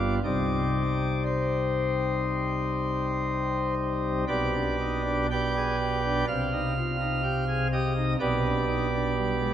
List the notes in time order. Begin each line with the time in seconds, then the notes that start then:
Already playing: G1 G2 G3 B3 F4 D5
0.24 C2 C3 G3 C4 D#4 D5
1.26 C5
4.28 B1 B2 G4 B4 D5
4.54 D4
4.80 D#4
5.05 D4
5.31 G4 B4 D5 G5
5.56 G#4
5.80 G4
6.03 D4
6.28 C2 C3 F5
6.52 D#4
6.77 F4
7.00 D#4
7.23 G4
7.48 G#4
7.72 G4 D#5
7.97 D#4
8.20 B1 B2 G4 B4 D5
8.45 D4
8.67 D#4
8.93 D4
9.16 G3
9.39 G#3